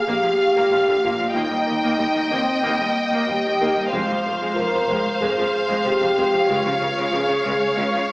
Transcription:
Already playing: F5
0.07 A#1 A#2 A#3 G4
0.24 A#2 F3
0.56 A#2 A#3
0.72 A#1 A#2 F3
0.88 A#2 D3
1.03 A#1 A#2 A#3 F4
1.19 A#2 F3
1.34 D#2 A#3 D#4 D#5 G5
1.50 D#2 G3
1.67 D#2 D#3
1.83 D#2 A#3
1.99 D#2 G3
2.15 D#2 D#3
2.31 D#2 A#3 C4
2.63 D#2 A#3
2.80 D#2 G3
3.12 D#2 A#3
3.28 D#2 G3 G4
3.45 D#2 D#3
3.60 D#2 A#3
3.76 D#2 G3
3.92 F1 F2 G#3 F4 C5 F5, taiko
4.09 F2 F3
4.25 F1 F2 C3
4.41 F2 G#3
4.56 F1 F2 F3 A#4
4.74 F2 C3
4.89 F1 F2 G#3, taiko
5.21 F1 F2 G#3 G#4
5.37 F2 F3
5.68 F2 G#3
5.84 F1 F2 F3 G4
6.01 F2 C3
6.16 F1 F2 G#3
6.32 F2 F3
6.49 C#2 C#3 G#3 F4 C#5
6.64 C#3 F3
6.80 C#2 C#3
6.97 C#3 G#3
7.12 C#2 C#3 F3 G#4
7.28 C#3
7.43 C#2 C#3 G#3
7.76 C#2 C#3 G#3 F4
7.93 C#3 F3

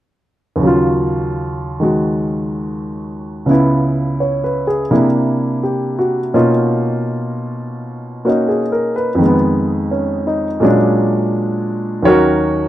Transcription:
0.56 D#2 C#3
0.63 F#3 F4
1.80 D#3 G#3 F#4
3.46 C#2 C#3 B3
3.50 E4
4.20 C#5
4.44 B4
4.67 G#4
4.91 C3 A#3 D4 E4
5.63 G4
5.99 F#4
6.34 B2 A#3 C#4 D#4 F4
8.25 A#3 C#4 D#4 F#4
8.49 G#4
8.72 A#4
8.96 B4
9.15 F2 D#3
9.22 G#3 B3
9.91 C#4
10.27 D#4
10.60 A#2 F#3 G#3 C#4
10.65 D4
12.02 D#2 D#3 F#3 C#5
12.07 C#4 F#4 A#4

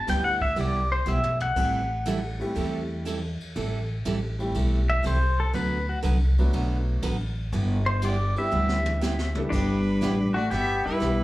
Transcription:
0.07 D2 G3 B3 D4 E4 G4 G5, snare, hi-hat pedal, ride
0.24 F#5
0.41 E5, kick
0.56 C2 G3 B3 E4 G4, ride
0.61 D5
0.92 C5
1.06 B1 G3 B3 E4 G4 E5, hi-hat pedal
1.24 floor tom
1.40 F#5, floor tom
1.56 A1 E3 G3 C4 E4 A4, kick, crash
2.06 E3 G3 C4 E4 A4, hi-hat pedal, ride
2.40 G3 A3 C4 E4 G4, ride
2.55 E2 E3 G3 C4 E4 A4, ride
3.05 E3 G3 C4 E4 A4, hi-hat pedal, ride
3.40 ride
3.56 A1 E3 G3 C4 E4 A4, ride
4.05 A1 E3 G3 C4 E4 A4, hi-hat pedal, ride
4.39 G3 A3 C4 E4 G4, ride
4.55 B1 E3 G3 C4 E4 A4, ride
4.90 E5
5.03 C2 E3 G3 C4 E4 A4 C5, hi-hat pedal, ride
5.40 A4
5.53 D2 D3 F#3 B3 F#4 B4, ride
5.89 F#4
6.03 C2 D3 F#3 B3 F#4 B4, hi-hat pedal, ride
6.38 F#3 A3 B3 D4 F#4, ride
6.53 B1 D3 F#3 B3 F#4 B4, ride
7.02 A1 D3 F#3 B3 F#4 B4, hi-hat pedal, ride
7.52 G1 G3 B3 E4 G4, ride
7.86 C5
8.02 G3 B3 E4 G4 D5, hi-hat pedal, ride
8.36 G3 B3 D4 E4 G4 E5, ride
8.51 D2 G3 B3 E4 G4, mid tom
8.69 snare
8.86 high tom
9.01 G3 B3 E4 G4, snare, hi-hat pedal
9.19 snare
9.35 G3 B3 D4 E4 A4, mid tom
9.50 G1 G3 B3 D4 E4 G4 B4, brush sweep, kick, snare, crash
10.01 A1 G3 B3 E4 G4, snare, hi-hat pedal
10.34 A3 F#4 D5
10.50 G1 G3 B3 E4 G4 E5, brush sweep, snare
10.86 G3 E4 B4, muted upright bass stroke
11.00 B1 G3 B3 D4 E4 G4, snare, hi-hat pedal

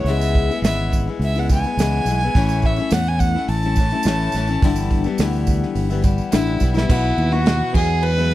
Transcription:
0.04 C#2 C#3 E5, open hi-hat
0.08 E3 G#3 B3 E4
0.21 tambourine
0.35 kick, tambourine
0.51 G#3 B3 E4, tambourine
0.62 G#1 C#3 E3 E5, snare, open hi-hat, tambourine
0.66 G#3 B3 E4
0.79 tambourine
0.92 kick, tambourine
1.07 G#3 B3 E4
1.19 C#2, open hi-hat
1.25 E5
1.36 G#3 B3 E4 F#5, tambourine
1.49 E3 G#3 B3 E4 G#5, kick, tambourine
1.64 G#3 B3 E4, tambourine
1.77 C#2 C#3 E3 G#3 B3, snare, open hi-hat, tambourine
1.81 E4
2.05 B1 E3 G#3, tambourine
2.10 B3 E4
2.21 B3 E4, tambourine
2.26 G#3
2.35 A1 A2 E3 A3 C#4 E4, kick, open hi-hat
2.49 tambourine
2.62 E5, kick, tambourine
2.76 C#4 E4, tambourine
2.81 A3
2.91 E2 A2 E3 A3 C#4 E4 F#5, snare, open hi-hat, tambourine
3.06 G#5, tambourine
3.20 F#5, kick, tambourine
3.35 A3 C#4 E4, snare
3.48 A1 A5, open hi-hat
3.62 A3 C#4 E4, tambourine
3.76 E3 A3 C#4, kick, tambourine
3.81 E4
3.91 A3 C#4 E4, tambourine
4.03 A1 A2 E3 A3, snare, open hi-hat, tambourine
4.07 C#4 E4
4.32 A1 E3 A3, tambourine
4.36 C#4 E4
4.47 C#4 E4, tambourine
4.51 A3
4.62 G1 G2 D3 E3 G3 B3 E4, kick, open hi-hat, tambourine
4.76 tambourine
4.91 kick, tambourine
5.04 E3 G3 B3 E4, tambourine
5.18 D2 G2 D3 E3 G3 B3 E4, snare, open hi-hat, tambourine
5.33 tambourine
5.47 kick, tambourine
5.62 snare
5.75 G1, open hi-hat, tambourine
5.90 E3 G3 B3 E4, tambourine
6.02 E3 G3 B3 E4, kick, tambourine
6.18 tambourine
6.32 A1 G2 D3 E3 G3 B3 E4, snare, open hi-hat, tambourine
6.47 tambourine
6.60 B1 E3 G3 B3 E4, kick, tambourine
6.74 E3 G3 B3 E4, snare, tambourine
6.88 B1 B2 E3 B3 E4 F#4 B4, kick, crash
7.17 D#2, crash
7.32 B3 E4 F#4
7.46 B2 E3 B3 E4 F#4, snare, crash
7.73 E2 F#3 G#3 B3 E4 F#4 G#4, kick, crash
7.78 B3 E4
8.03 B4, crash
8.17 F#3 G#3 B3 E4
8.31 crash

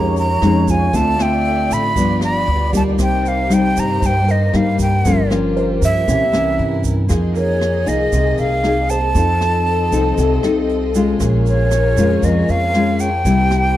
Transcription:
Already playing: F2 F3 G#3 C#4 D#4 G4 A#4 C#5 A#5
0.16 A#5, closed hi-hat, shaker
0.42 F2 G#3 C#4 D#4, cross-stick, closed hi-hat
0.68 F4 G#5, kick, closed hi-hat, shaker
0.93 D2 D3 A3 C4 F4 A4 D5 E5 A5, kick, closed hi-hat, shaker
1.19 A3 C4 F4 G5, cross-stick, closed hi-hat, shaker
1.44 closed hi-hat
1.70 A1 B5, closed hi-hat, shaker
1.96 G1 G2 F3 B3 D4 G4 D5, kick, closed hi-hat, shaker
2.21 B5, cross-stick, closed hi-hat, shaker
2.47 D2, closed hi-hat
2.73 G3 A#3 D#4 G4 A5, kick, closed hi-hat, shaker
2.99 C2 C3 A#3 D#4 C5 G5, kick, cross-stick, closed hi-hat, shaker
3.25 F5, closed hi-hat, shaker
3.50 G3 A#3 D#4 G5, cross-stick, closed hi-hat, shaker
3.76 G2 A#5, closed hi-hat, shaker
4.02 G2, kick, closed hi-hat, shaker
4.06 G5
4.28 A#4 D#5, closed hi-hat, shaker
4.53 G2 G3 A#3 D#4 F5, cross-stick, closed hi-hat
4.79 G5, kick, closed hi-hat, shaker
5.04 G1 G2 F3 A#3 C#4 F4 G4 A#4, kick, closed hi-hat, shaker
5.30 F3 A#3 C#4, cross-stick, closed hi-hat, shaker
5.56 C5, closed hi-hat
5.82 G2 E5, kick, closed hi-hat, shaker
6.07 C2 C3 E3 A#3 C#4 E4 G4 A#4, kick, closed hi-hat, shaker
6.32 E3 A#3 C#4, cross-stick, closed hi-hat, shaker
6.59 G2, closed hi-hat
6.84 kick, closed hi-hat, shaker
7.09 F2 F3 A#3 D#4 G#4 D#5, kick, cross-stick, closed hi-hat, shaker
7.35 A#4 C#5, closed hi-hat, shaker
7.61 cross-stick, closed hi-hat
7.86 C2 A#3 D#4 G#4 D#5, closed hi-hat, shaker
8.12 C2 C3, kick, closed hi-hat, shaker
8.38 C2 F5, closed hi-hat, shaker
8.64 A#3 D#4 G#4, cross-stick, closed hi-hat
8.89 C5 A5, closed hi-hat, shaker
9.15 F2 F3 C4 D#4 F4 A4 D#5, kick, closed hi-hat, shaker
9.41 cross-stick, closed hi-hat, shaker
9.66 closed hi-hat
9.92 C2 C4 D#4 A4, closed hi-hat, shaker
10.18 C2 C3, kick, closed hi-hat, shaker
10.43 C2 C4 D#4 A4, cross-stick, closed hi-hat, shaker
10.69 closed hi-hat
10.95 G#3 C#4 F4, shaker
11.19 A#1 A#2 A#3 G#4 A#4 C#5, kick, cross-stick, closed hi-hat, shaker
11.45 C#5, closed hi-hat, shaker
11.71 cross-stick, closed hi-hat, shaker
11.97 F2 G#3 C#4 F4, closed hi-hat, shaker
12.22 F2 F3 D#5, kick, closed hi-hat, shaker
12.48 F2 F5, closed hi-hat, shaker
12.74 G#3 C#4 F4, cross-stick, closed hi-hat
13.00 G5, shaker
13.25 C2 C3 G3 A#3 E4 G4 C5, kick, closed hi-hat, shaker
13.51 cross-stick, shaker

